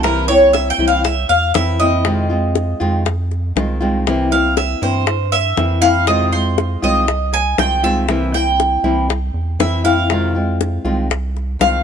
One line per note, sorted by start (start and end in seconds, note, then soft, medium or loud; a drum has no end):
0.00 0.72 C2 loud
0.00 0.28 C3 medium
0.00 0.28 E3 medium
0.00 0.28 A#4 medium
0.04 0.28 A#3 medium
0.04 0.28 C4 medium
0.04 0.28 E4 medium
0.04 high bongo medium
0.28 0.79 A#3 soft
0.28 0.78 C4 soft
0.28 0.78 E4 medium
0.28 0.53 C#5 medium
0.28 high bongo soft
0.53 0.70 E5 medium
0.53 high bongo medium
0.70 0.87 G5 medium
0.78 1.26 C2 medium
0.78 1.04 E3 medium
0.78 1.04 A#3 medium
0.78 1.04 C4 medium
0.78 1.03 E4 medium
0.78 high bongo soft
0.88 1.04 F5 medium
1.04 1.29 E5 medium
1.04 muted nylon-string guitar stroke medium
1.04 high bongo medium
1.29 1.53 E2 medium
1.29 1.54 F5 loud
1.54 2.74 F2 loud
1.54 1.79 E3 medium
1.54 1.80 A#3 medium
1.54 1.80 C4 medium
1.54 1.79 E4 medium
1.54 1.79 E5 medium
1.54 high bongo medium
1.54 low bongo medium
1.80 2.05 E3 medium
1.80 2.05 A#3 medium
1.80 2.05 C4 medium
1.80 2.04 E4 medium
1.80 3.02 D#5 medium
1.80 high bongo soft
2.05 2.29 C3 medium
2.05 2.29 D#3 medium
2.05 2.30 G#3 medium
2.05 2.30 C4 medium
2.05 2.28 F4 medium
2.05 high bongo medium
2.30 2.80 G#3 soft
2.30 2.79 C4 medium
2.30 2.79 F4 medium
2.55 high bongo medium
2.80 3.52 F2 loud
2.80 3.04 D#3 medium
2.80 3.05 G#3 medium
2.80 3.05 C4 medium
2.80 3.04 F4 medium
2.80 high bongo soft
3.05 muted nylon-string guitar stroke medium
3.05 high bongo medium
3.31 high bongo soft
3.56 4.75 C2 medium
3.56 3.80 D#3 medium
3.56 3.80 G#3 medium
3.56 3.80 C4 medium
3.56 3.79 F4 medium
3.56 high bongo medium
3.56 low bongo medium
3.81 4.06 D#3 medium
3.81 4.06 G#3 medium
3.81 4.05 C4 medium
3.81 4.05 F4 medium
3.81 high bongo soft
4.06 4.31 C3 medium
4.06 4.31 E3 medium
4.06 4.31 A#3 medium
4.06 4.31 C4 medium
4.06 4.30 E4 medium
4.06 high bongo medium
4.31 4.82 A#3 soft
4.31 4.81 C4 soft
4.31 4.80 E4 medium
4.31 4.56 F5 medium
4.31 high bongo soft
4.57 4.81 E5 medium
4.57 high bongo medium
4.82 5.54 G2 loud
4.82 5.05 E3 soft
4.82 5.05 A#3 medium
4.82 5.06 C4 medium
4.82 5.06 E4 medium
4.82 5.29 C5 medium
4.82 high bongo soft
5.06 muted nylon-string guitar stroke medium
5.06 high bongo medium
5.32 6.04 E5 loud
5.56 6.77 F2 loud
5.56 5.81 E3 medium
5.56 5.81 A#3 medium
5.56 5.81 C4 medium
5.56 5.80 E4 medium
5.56 high bongo medium
5.56 low bongo medium
5.81 6.07 E3 medium
5.81 6.07 A#3 medium
5.81 6.06 C4 medium
5.81 6.06 E4 medium
5.81 6.07 F5 loud
5.81 high bongo soft
6.07 6.32 C3 medium
6.07 6.32 D#3 medium
6.07 6.32 G#3 medium
6.07 6.33 C4 medium
6.07 6.32 F4 medium
6.07 6.32 D#5 medium
6.07 high bongo medium
6.33 6.83 G#3 soft
6.33 6.82 C4 soft
6.33 6.81 F4 medium
6.33 6.80 C5 medium
6.58 high bongo medium
6.82 7.55 C2 loud
6.82 7.07 D#3 soft
6.82 7.07 G#3 medium
6.82 7.07 C4 medium
6.82 7.07 F4 medium
6.82 7.55 D#5 medium
6.82 high bongo soft
7.08 muted nylon-string guitar stroke medium
7.08 high bongo medium
7.33 7.58 G#5 loud
7.33 high bongo soft
7.58 8.78 C2 medium
7.58 7.83 D#3 medium
7.58 7.83 G#3 medium
7.58 7.83 C4 medium
7.58 7.82 F4 medium
7.58 7.83 G5 loud
7.58 high bongo medium
7.58 low bongo medium
7.83 8.08 D#3 medium
7.83 8.08 G#3 medium
7.83 8.08 C4 medium
7.83 8.08 F4 medium
7.83 8.31 E5 medium
7.83 high bongo soft
8.08 8.33 C3 medium
8.08 8.33 E3 medium
8.08 8.33 A#3 medium
8.08 8.33 C4 medium
8.08 8.32 E4 medium
8.08 high bongo medium
8.33 8.84 A#3 soft
8.33 8.83 C4 soft
8.33 8.83 E4 medium
8.33 9.06 G5 medium
8.33 high bongo soft
8.60 high bongo medium
8.84 9.31 C2 loud
8.84 9.08 E3 medium
8.84 9.08 A#3 medium
8.84 9.08 C4 medium
8.84 9.08 E4 medium
8.84 high bongo soft
9.09 muted nylon-string guitar stroke medium
9.09 high bongo medium
9.34 9.58 E2 medium
9.59 10.79 F2 medium
9.59 9.84 E3 soft
9.59 9.84 A#3 medium
9.59 9.84 C4 medium
9.59 9.83 E4 medium
9.59 9.84 E5 medium
9.59 high bongo medium
9.59 low bongo medium
9.84 10.10 E3 medium
9.84 10.09 A#3 medium
9.84 10.09 C4 medium
9.84 10.09 E4 medium
9.84 10.56 F5 medium
9.84 high bongo soft
10.10 10.34 C3 medium
10.10 10.34 D#3 medium
10.10 10.35 G#3 medium
10.10 10.35 C4 medium
10.10 10.33 F4 medium
10.10 high bongo medium
10.35 10.85 G#3 soft
10.35 10.84 C4 soft
10.35 10.83 F4 medium
10.61 high bongo medium
10.85 11.57 C2 medium
10.85 11.09 D#3 medium
10.85 11.10 G#3 medium
10.85 11.10 C4 medium
10.85 11.09 F4 medium
10.85 high bongo soft
11.10 muted nylon-string guitar stroke medium
11.10 high bongo medium
11.37 high bongo soft
11.59 11.83 C2 loud
11.59 11.83 D#3 medium
11.59 11.83 G#3 medium
11.59 11.83 C4 medium
11.59 11.83 F4 medium
11.59 11.83 F5 medium
11.59 high bongo medium
11.59 low bongo medium